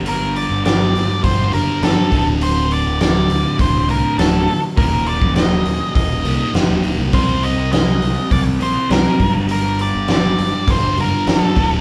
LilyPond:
<<
  \new Staff \with { instrumentName = "Lead electric guitar" } { \time 4/4 \tempo 4 = 102 bes'8 d''8 d''4 c''8 bes'8 a'8. r16 | c''8 d''8 d''4 c''8 bes'8 a'8. r16 | bes'8 d''8 ees''4 ees''4 r4 | c''8 ees''8 ees''4 d''8 c''8 bes'8. r16 |
bes'8 d''8 d''4 c''8 bes'8 a'8. r16 | }
  \new Staff \with { instrumentName = "Distorted electric guitar" } { \clef bass \time 4/4 <g, d g>2 <g, d g>8 <g, d g>4 <d, a, d>8~ | <d, a, d>2 <d, a, d>8 <d, a, d>4 r8 | <ees, bes, ees>2~ <ees, bes, ees>8 <ees, bes, ees>8 <ees, bes, ees>4 | <c g c'>2~ <c g c'>8 <c g c'>8 <c g c'>8 <g, d g>8~ |
<g, d g>2 <g, d g>8 <g, d g>4 <d, a, d>8 | }
  \new Staff \with { instrumentName = "Picked electric bass" } { \clef bass \time 4/4 g,,8. g,,8. g,,16 r16 g,,8 fis,,16 r16 g,,16 r16 d,,8~ | d,,8. d,,8. d,,16 r16 d,,8 c,16 r16 d,,8 r8 | ees,,8. ees,,8. ees,,16 r16 ees,,8 c,16 r16 fis,,16 ees,,16 d,,16 c,16 | c,8. c,8. c,16 r16 c,8 bes,,16 r16 c,16 r16 g,,8~ |
g,,8. g,,8. g,,16 r16 g,,8 fis,,16 r16 g,,16 r16 d,,8 | }
  \new DrumStaff \with { instrumentName = "Drums" } \drummode { \time 4/4 hho8 hho8 <hho sn>8 hho8 <hho bd>8 hho8 <hho sn>8 <hho bd>8 | hho8 hho8 <hho sn>8 hho8 <hho bd>8 hho8 <hho sn>8 hho8 | <hho bd>8 hho16 bd16 <hho sn>8 hho8 <hho bd>8 hho8 <hho sn>8 hho8 | <hho bd>8 hho8 <hho sn>8 hho8 <hho bd>8 hho8 <hho sn>8 <hho bd>8 |
hho8 hho8 <hho sn>8 hho8 <hho bd>8 hho8 <hho sn>8 <hho bd>8 | }
>>